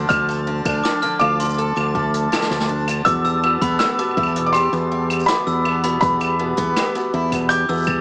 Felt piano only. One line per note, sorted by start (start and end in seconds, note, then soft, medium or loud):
0.09 1.16 F6 loud
1.19 2.64 D6 medium
3.05 3.78 E6 medium
3.79 4.49 E6 medium
4.46 4.54 D6 medium
4.53 5.30 C6 medium
5.26 5.97 B5 medium
6.01 7.46 B5 loud
7.49 8.01 G6 loud